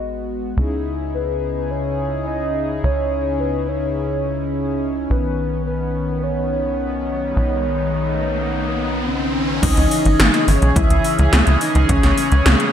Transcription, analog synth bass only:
0.00 0.54 G#1 medium
0.57 2.81 C#2 medium
2.84 5.07 C#2 medium
5.10 7.34 B1 medium
7.36 9.60 B1 medium
9.63 9.73 C#2 loud
9.77 9.87 C#2 medium
10.05 10.16 G#1 medium
10.20 10.30 G#1 loud
10.48 10.58 G#1 medium
10.62 10.72 B1 medium
10.76 10.86 C#2 loud
10.90 11.01 C#2 medium
11.19 11.29 C#2 medium
11.33 11.43 C#2 loud
11.47 11.57 C#2 medium
11.75 11.85 C#2 medium
11.89 11.99 C#2 loud
12.04 12.14 C#2 medium
12.32 12.42 C#2 medium
12.46 12.56 C#2 loud

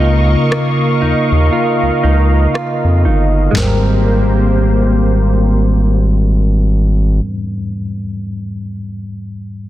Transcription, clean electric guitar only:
0.00 3.56 C#3 medium
0.00 1.01 D#4 medium
0.00 1.51 F4 medium
0.00 1.98 A#4 medium
0.51 3.51 A#3 medium
1.02 2.03 D#4 medium
1.53 2.53 F4 medium
2.03 3.05 D#4 medium
2.54 3.62 F4 medium
3.05 3.57 D#4 medium
3.51 7.19 G#3 medium
3.58 7.25 C4 medium
3.63 7.30 G4 medium
3.67 7.35 A#4 medium

